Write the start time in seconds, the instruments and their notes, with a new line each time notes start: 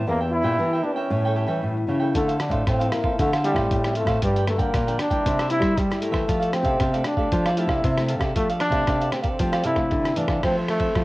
0.06 nylon-string guitar E2 E3 A#3 D4 G4, trombone A#3, cavaquinho D4 A#4 E5 G5
0.21 cavaquinho A#4 E5 G5
0.32 trombone E4, muted cavaquinho stroke
0.43 nylon-string guitar A#2 A#3 D4 G4, cavaquinho A#4 E5 G5
0.59 nylon-string guitar E3, cavaquinho D4 A#4 E5 G5
0.73 cavaquinho A#4 E5 G5
0.83 nylon-string guitar A#3 D4 G4, trombone D4
0.94 trombone C#4, cavaquinho A#4 E5 G5
1.10 nylon-string guitar A2 G3 C#4 E4, cavaquinho G4 A4 C#5 G5
1.25 cavaquinho A4 C#5 G5
1.36 cavaquinho G4 A4 C#5 G5
1.46 nylon-string guitar E3 G3 C#4 E4, cavaquinho A4 C#5 G5
1.61 nylon-string guitar A2 E3
1.77 muted cavaquinho stroke
1.87 nylon-string guitar C#3 G3 C#4 E4, cavaquinho G4 A4 C#5 G5
2.00 cavaquinho A4 C#5 G5
2.13 nylon-string guitar D3 F3 C4 E4, trombone A3, cavaquinho D4 A4 C5 F5, kick, closed hi-hat
2.28 cavaquinho A4 C5 F5, closed hi-hat
2.38 nylon-string guitar F3 C4 E4, trombone D4, muted cavaquinho stroke, cross-stick, closed hi-hat
2.49 nylon-string guitar A2, cavaquinho A4 C5 F5, kick, closed hi-hat
2.65 nylon-string guitar A2, trombone C4, cavaquinho D4 A4 C5 F5, kick, cross-stick, closed hi-hat
2.79 nylon-string guitar F3 C4 E4, cavaquinho A4 C5 F5, closed hi-hat
2.92 trombone A#3, cross-stick, closed hi-hat
3.03 nylon-string guitar F3 C4 E4, cavaquinho A4 C5 F5, kick
3.18 nylon-string guitar D3 F3 C4 E4, trombone A3, cavaquinho D4 A4 C5 F5, kick, closed hi-hat
3.32 cavaquinho A4 C5 F5, cross-stick, closed hi-hat
3.43 nylon-string guitar F3 C4 E4, trombone G3, cavaquinho D4 A4 C5 F5, closed hi-hat
3.53 nylon-string guitar A2, cavaquinho C5 F5, kick, cross-stick
3.58 cavaquinho A4
3.70 nylon-string guitar A2, kick, closed hi-hat
3.83 nylon-string guitar F3 C4 E4, muted cavaquinho stroke, cross-stick, closed hi-hat
3.95 trombone A3, cavaquinho D4 A4 C5 F5, closed hi-hat
4.05 nylon-string guitar A2, cavaquinho A4 C5 F5, kick, cross-stick, closed hi-hat
4.22 nylon-string guitar G2 F3 A#3 D4, trombone G3, cavaquinho F4 A#4 D5 G5, kick, closed hi-hat
4.36 cavaquinho A#4 D5 G5, closed hi-hat
4.47 nylon-string guitar F3 A#3 D4, trombone A3, muted cavaquinho stroke, cross-stick, closed hi-hat
4.57 nylon-string guitar D3, trombone A#3, cavaquinho A#4 D5 G5, kick, closed hi-hat
4.74 nylon-string guitar A#2 D3, cavaquinho F4 A#4 D5 G5, kick, cross-stick, closed hi-hat
4.87 nylon-string guitar F3 A#3 D4, cavaquinho A#4 D5 G5, closed hi-hat
4.99 trombone D4, cross-stick, closed hi-hat
5.10 nylon-string guitar G3 A#3 E4, cavaquinho A#4 D5 G5, kick, closed hi-hat
5.25 nylon-string guitar C3, cavaquinho E4 A#4 C5 E5, kick, closed hi-hat
5.39 cavaquinho A#4 C5 E5, cross-stick, closed hi-hat
5.49 nylon-string guitar G3 A#3 E4, trombone E4, cavaquinho E4 A#4 C5 E5, closed hi-hat
5.60 nylon-string guitar G3, cavaquinho C5 E5, kick, cross-stick, closed hi-hat
5.64 cavaquinho A#4
5.77 nylon-string guitar G2 G3, trombone G3, kick, closed hi-hat
5.90 nylon-string guitar G3 A#3 E4, muted cavaquinho stroke, cross-stick, closed hi-hat
6.02 trombone A3, cavaquinho E4 A#4 C5 E5, closed hi-hat
6.11 nylon-string guitar E3, cavaquinho A#4 C5 E5, kick, cross-stick
6.27 nylon-string guitar F3 A3 D4 G4, cavaquinho D4 A4 D5 F5, kick, closed hi-hat
6.40 cavaquinho A4 D5 F5, closed hi-hat
6.52 nylon-string guitar A3 D4 G4, trombone C4, muted cavaquinho stroke, cross-stick, closed hi-hat
6.63 nylon-string guitar C3, cavaquinho A4 D5 F5, kick, closed hi-hat
6.80 nylon-string guitar C3, cavaquinho D4 A4 D5 F5, kick, cross-stick, closed hi-hat
6.93 nylon-string guitar A3 D4 G4, cavaquinho A4 D5 F5, closed hi-hat
7.04 trombone D4, cross-stick, closed hi-hat
7.17 nylon-string guitar A3 D4 G4, cavaquinho A4 D5 F5, kick
7.32 nylon-string guitar F3 A3 D4 G4, cavaquinho D4 A4 D5 F5, kick, closed hi-hat
7.46 cavaquinho A4 D5 F5, cross-stick, closed hi-hat
7.51 trombone F4
7.57 nylon-string guitar A3 D4 G4, cavaquinho D4 A4 D5 F5, trombone E4, closed hi-hat
7.67 nylon-string guitar C3, cavaquinho A4 D5 F5, kick, cross-stick
7.84 nylon-string guitar C3, kick, closed hi-hat
7.97 nylon-string guitar A3 D4 G4, muted cavaquinho stroke, cross-stick, closed hi-hat
8.08 cavaquinho D4 A4 D5 F5, closed hi-hat
8.18 nylon-string guitar C3, cavaquinho A4 D5 F5, kick, cross-stick, closed hi-hat
8.35 nylon-string guitar F3 A3 D4 G4, trombone A3, cavaquinho D4 A4 D5 F5, kick, closed hi-hat
8.49 cavaquinho A4 D5 F5, closed hi-hat
8.60 trombone D4, muted cavaquinho stroke, cross-stick, closed hi-hat
8.70 nylon-string guitar C3 A3 D4 G4, cavaquinho A4 D5 F5, kick, closed hi-hat
8.87 nylon-string guitar C3, cavaquinho D4 A4 D5 F5, kick, cross-stick, closed hi-hat
9.00 cavaquinho A4 D5 F5, closed hi-hat
9.12 nylon-string guitar A3 D4 G4, trombone C4, cross-stick, closed hi-hat
9.22 trombone A#3, cavaquinho A4 D5 F5, kick, closed hi-hat
9.29 trombone C4
9.39 nylon-string guitar F3 A3 D4 G4, cavaquinho D4 A4 D5 F5, kick, closed hi-hat
9.52 cavaquinho A4 D5 F5, cross-stick, closed hi-hat
9.63 nylon-string guitar C3, cavaquinho D4 A4 D5 F5, trombone E4, closed hi-hat
9.75 nylon-string guitar A3 D4 G4, cavaquinho A4 D5 F5, kick, cross-stick, closed hi-hat
9.91 nylon-string guitar C3 D3, kick, closed hi-hat
10.05 muted cavaquinho stroke, cross-stick, closed hi-hat
10.16 nylon-string guitar E3 A3 D4 G4, cavaquinho D4 A4 D5 F5, trombone D4, closed hi-hat
10.28 cavaquinho A4 D5 F5, kick, cross-stick
10.43 nylon-string guitar F2 F3 A3 C4, trombone C4, cavaquinho F4 A4 C5 E5, kick, cross-stick, ride
10.58 cavaquinho A4 C5 E5
10.68 trombone A3, muted cavaquinho stroke, cross-stick, ride
10.79 nylon-string guitar E3 A3 C4, cavaquinho A4 C5 E5, kick, ride
10.95 nylon-string guitar C3 F3, cavaquinho F4 A4 C5 E5, kick, cross-stick, ride